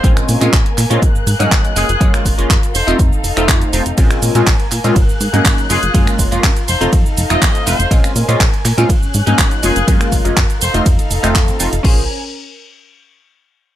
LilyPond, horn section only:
\new Staff \with { instrumentName = "Horn section" } { \time 4/4 \key bes \minor \tempo 4 = 122 r2. r8 aes'8~ | aes'16 r4 r16 c''8 r2 | r2. r8 aes'8~ | aes'16 r4 r16 c''8 r8. ees''8. c''8 |
r2. r8 aes'8~ | aes'16 r4 r16 c''8 r2 | r1 | }